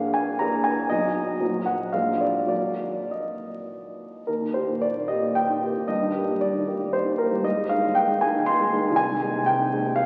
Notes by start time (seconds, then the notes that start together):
Already playing: A#1 A#3 D4 G#4 F5
0.14 G#5
0.39 A#3 D4 G#4 A#5
0.64 G#5
0.89 B1 F#3 D#4 F#4 D#5
1.40 A#1 F#3 D#4 F#4
1.66 F#5
1.93 A#1 G#3 D4 F4 F5
2.20 D5
2.45 D#2 F#3 A#3 F#4 D5
3.11 D#5
4.27 D#2 A#4
4.41 D#3
4.54 A#3 G4 C5
4.69 A#2
4.81 D5
4.96 D#3
5.08 A#3 G4 D#5
5.22 A#2
5.35 G5
5.49 D#3
5.63 A#3 G4
5.76 A#2
5.88 G2 D#5
6.01 D#3
6.15 A#3 G4
6.29 G3
6.41 D5
6.55 D#3
6.67 A#3 G4
6.80 G3
6.93 C5
7.05 D#3
7.18 A#3 G4 A#4
7.32 G3
7.42 G#2 D#5
7.57 G#3
7.69 G#3 D#4 F5
7.83 D#3
7.95 G5
8.09 G#3
8.21 G#3 D#4 G#5
8.36 D#3
8.46 C6
8.61 G#3
8.73 G#3 D#4
8.85 D#3
8.91 C2
8.96 G#5
9.10 D#3
9.22 G#3 D#4
9.35 C3
9.46 G5
9.59 D#3
9.73 G#3 D#4
9.86 C3
9.96 F5